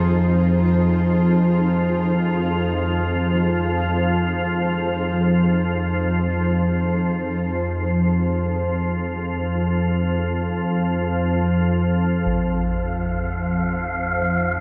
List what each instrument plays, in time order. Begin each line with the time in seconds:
Already playing: synth drone F2 F3, ambient pad D#4 F4 G#4 C5
12.24 synth drone F2 F3, ambient pad D#4, synth texture F5, concert bass drum
13.89 ambient pad F4
14.11 ambient pad G#4